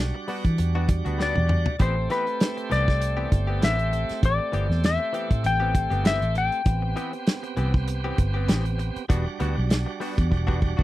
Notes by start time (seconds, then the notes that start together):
Already playing: B1 G3 D4 F#4
0.15 muted clean electric guitar stroke
0.28 G3 B3 D4 F#4, open hi-hat
0.45 E3, kick, closed hi-hat
0.58 E2, muted clean electric guitar stroke, closed hi-hat
0.75 G3 B3 D4 F#4
0.89 muted clean electric guitar stroke, kick, closed hi-hat
1.05 D2 B3 D4 F#4, closed hi-hat
1.18 G3 B3 D4 F#4, snare
1.22 D5
1.36 E2, muted clean electric guitar stroke, high tom
1.49 muted clean electric guitar stroke, mid tom
1.66 floor tom
1.79 A1 E3 A3 B3 C4 G4 C5, kick, closed hi-hat
1.96 muted clean electric guitar stroke
2.10 E3 B3 C4 G4 B4, snare, closed hi-hat
2.27 muted clean electric guitar stroke, closed hi-hat
2.40 snare, closed hi-hat
2.57 muted clean electric guitar stroke, closed hi-hat
2.70 C2 E3 B3 C4 G4 D5, snare, closed hi-hat
2.87 muted clean electric guitar stroke, kick, snare
3.00 muted clean electric guitar stroke, closed hi-hat
3.17 E3 B3 C4 G4
3.31 G1, muted clean electric guitar stroke, kick, closed hi-hat
3.47 B3 C4 G4
3.61 A1 E3 B3 C4 G4 E5, snare, closed hi-hat
3.78 muted clean electric guitar stroke, closed hi-hat
3.92 muted clean electric guitar stroke, closed hi-hat
4.09 muted fingered electric bass stroke, snare, closed hi-hat
4.23 A1 D5, kick, closed hi-hat
4.38 muted clean electric guitar stroke
4.52 G1 E3 B3 C4 G4, closed hi-hat
4.69 E2, muted clean electric guitar stroke, snare
4.84 E5, snare, closed hi-hat
4.99 muted clean electric guitar stroke
5.13 E3 B3 C4 G4, closed hi-hat
5.30 A2, muted clean electric guitar stroke, kick, closed hi-hat
5.43 A1 G5, muted clean electric guitar stroke, closed hi-hat
5.60 E3 B3 C4 G4
5.75 kick, closed hi-hat
5.90 G1 B3 C4 G4, closed hi-hat
6.04 E3 B3 C4 G4 E5, snare, closed hi-hat
6.21 A1, muted clean electric guitar stroke, closed hi-hat
6.35 G5, muted clean electric guitar stroke, closed hi-hat
6.52 closed hi-hat
6.65 A1 B3 C4 G4, kick, closed hi-hat
6.82 muted clean electric guitar stroke
6.96 E3 B3 C4 G4, closed hi-hat
7.13 muted clean electric guitar stroke, closed hi-hat
7.27 snare, closed hi-hat
7.43 muted clean electric guitar stroke, closed hi-hat
7.57 C2 E3 B3 C4 G4, closed hi-hat
7.74 muted clean electric guitar stroke, kick
7.87 muted clean electric guitar stroke, closed hi-hat
8.04 E3 B3 C4 G4
8.18 G1, kick, closed hi-hat
8.34 B3 C4 G4
8.48 A1 E3 B3 C4 G4, snare, closed hi-hat
8.65 muted clean electric guitar stroke, closed hi-hat
8.78 muted clean electric guitar stroke, closed hi-hat
8.96 muted fingered electric bass stroke, closed hi-hat
9.08 E1 G3 B3 D4 F#4, kick, closed hi-hat
9.26 muted clean electric guitar stroke
9.40 D2 G3 B3 D4 F#4, closed hi-hat
9.57 B1, muted clean electric guitar stroke
9.70 snare, closed hi-hat
9.86 muted clean electric guitar stroke
10.00 G3 B3 D4 F#4, open hi-hat
10.17 E2, muted clean electric guitar stroke, kick, closed hi-hat
10.31 E1, muted clean electric guitar stroke, kick
10.47 G3 B3 D4 F#4, kick
10.61 muted clean electric guitar stroke, kick
10.77 D2 B3 D4 F#4, kick